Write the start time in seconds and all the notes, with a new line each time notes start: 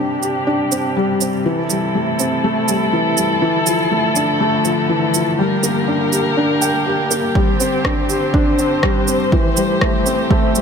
Already playing: C3 G3 C4 D4 G4
0.22 G4, shaker
0.47 D4
0.72 C4, shaker
0.96 G3
1.21 C4, shaker
1.46 E3 E4 A4
1.70 G3, shaker
1.95 A3
2.19 C4, shaker
2.44 A3
2.68 G3, shaker
2.93 E3
3.17 G3, shaker
3.42 D3 E3
3.66 F3, shaker
3.91 A3
4.16 D4, shaker
4.40 A3
4.65 F3, shaker
4.89 E3
5.14 F3, shaker
5.39 G3 A#3 G4 A#4
5.63 A#3, shaker
5.88 D4
6.12 G4, shaker
6.37 D4
6.62 G5, shaker
6.86 G4
7.11 A#3, shaker
7.35 D3 G3 C4 C5, kick
7.60 C4, shaker
7.85 D4, kick, cross-stick
8.09 G4, shaker
8.34 D4, kick
8.59 C4, shaker
8.83 G3, kick, cross-stick
9.08 C4, shaker
9.32 E3 A3 G4, kick
9.57 G3, shaker
9.81 A3, kick, cross-stick
10.06 C4, shaker
10.31 A3, kick
10.55 G3, shaker